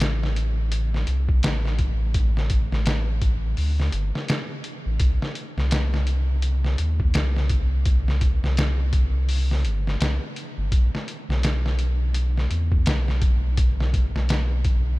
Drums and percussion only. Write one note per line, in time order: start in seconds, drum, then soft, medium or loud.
0.00 snare loud
0.00 closed hi-hat medium
0.23 snare soft
0.36 closed hi-hat medium
0.72 closed hi-hat medium
0.94 snare soft
1.07 closed hi-hat medium
1.29 kick medium
1.43 snare loud
1.43 closed hi-hat medium
1.65 snare soft
1.79 kick medium
1.79 closed hi-hat medium
2.14 kick loud
2.14 closed hi-hat medium
2.37 snare soft
2.50 kick medium
2.50 closed hi-hat medium
2.72 snare soft
2.86 snare loud
2.86 closed hi-hat medium
3.22 kick medium
3.22 closed hi-hat medium
3.57 open hi-hat medium
3.80 snare soft
3.92 closed hi-hat medium
4.15 snare soft
4.28 snare loud
4.28 closed hi-hat medium
4.64 closed hi-hat medium
5.00 kick loud
5.00 closed hi-hat medium
5.22 snare soft
5.35 closed hi-hat medium
5.58 snare soft
5.71 snare loud
5.71 closed hi-hat medium
5.94 snare soft
6.07 closed hi-hat medium
6.42 closed hi-hat medium
6.65 snare soft
6.78 closed hi-hat medium
7.00 kick medium
7.14 snare loud
7.14 closed hi-hat medium
7.37 snare soft
7.50 kick medium
7.50 closed hi-hat medium
7.86 kick loud
7.86 closed hi-hat medium
8.08 snare soft
8.21 kick medium
8.21 closed hi-hat medium
8.44 snare soft
8.57 snare loud
8.57 closed hi-hat medium
8.93 kick medium
8.93 closed hi-hat medium
9.29 open hi-hat medium
9.51 snare soft
9.65 closed hi-hat medium
9.87 snare soft
10.01 snare loud
10.01 closed hi-hat medium
10.36 closed hi-hat medium
10.72 kick loud
10.72 closed hi-hat medium
10.95 snare soft
11.08 closed hi-hat medium
11.30 snare soft
11.43 snare loud
11.43 closed hi-hat medium
11.66 snare soft
11.79 closed hi-hat medium
12.14 closed hi-hat medium
12.38 snare soft
12.51 closed hi-hat medium
12.72 kick medium
12.86 snare loud
12.86 closed hi-hat medium
13.08 snare soft
13.22 kick medium
13.22 closed hi-hat medium
13.57 kick loud
13.57 closed hi-hat medium
13.80 snare soft
13.94 kick medium
13.94 closed hi-hat medium
14.16 snare soft
14.29 snare loud
14.29 closed hi-hat medium
14.65 kick medium
14.65 closed hi-hat medium